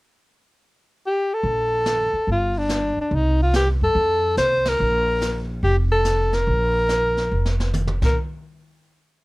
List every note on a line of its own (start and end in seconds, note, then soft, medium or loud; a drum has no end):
1.07 1.36 G4 medium
1.34 2.29 A4 medium
1.43 2.09 A#1 medium
1.43 brush sweep soft
1.43 kick soft
1.86 snare medium
1.86 hi-hat pedal medium
2.13 muted upright bass stroke soft
2.27 2.93 G1 medium
2.27 brush sweep medium
2.27 kick soft
2.32 2.59 F4 medium
2.58 2.99 D4 medium
2.69 snare medium
2.69 hi-hat pedal medium
2.97 3.16 D4 medium
2.97 muted upright bass stroke soft
3.11 3.77 C2 medium
3.11 3.41 D#4 medium
3.11 brush sweep soft
3.11 kick soft
3.43 3.54 F4 medium
3.53 3.68 G4 medium
3.53 snare medium
3.53 hi-hat pedal medium
3.81 3.94 F#2 medium
3.81 4.34 A4 loud
3.95 4.34 F2 medium
3.95 brush sweep soft
3.95 kick soft
4.37 4.76 C2 medium
4.37 4.70 C5 loud
4.37 snare medium
4.37 hi-hat pedal medium
4.65 5.43 A#4 medium
4.65 snare medium
4.65 ride medium
4.79 5.60 A#1 medium
4.79 brush sweep medium
5.21 snare medium
5.21 hi-hat pedal medium
5.63 6.43 F1 medium
5.63 5.76 G4 medium
5.63 brush sweep soft
5.63 kick soft
5.92 6.36 A4 medium
6.05 snare medium
6.05 hi-hat pedal medium
6.33 7.61 A#4 medium
6.33 snare soft
6.47 7.28 A#1 medium
6.47 brush sweep soft
6.47 kick soft
6.89 snare medium
6.89 hi-hat pedal medium
7.17 snare soft
7.31 7.99 F1 medium
7.45 snare soft
7.60 snare medium
7.73 hi-hat pedal soft
7.73 mid tom medium
7.87 mid tom medium
8.02 8.15 A#1 medium
8.02 8.17 A#4 medium
8.02 kick medium
8.02 snare medium
8.02 crash medium